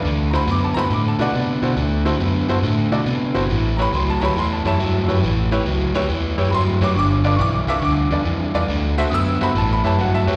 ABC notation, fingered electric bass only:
X:1
M:4/4
L:1/8
Q:"Swing" 1/4=139
K:Dmix
V:1 name="Fingered electric bass" clef=bass
D,,2 F,, G,, A,, B,, C, B,, | D,,2 F,, G,, A,, B,, C, G,,, | A,,,2 ^C,, D,, E,, F,, G,, F,, | A,,,2 ^C,, D,, E,, F,, G,, F,, |
G,,,2 B,,, C,, D,, E,, =F,, E,, | D,,2 F,, G,, A,,, F,, G,, F,, |]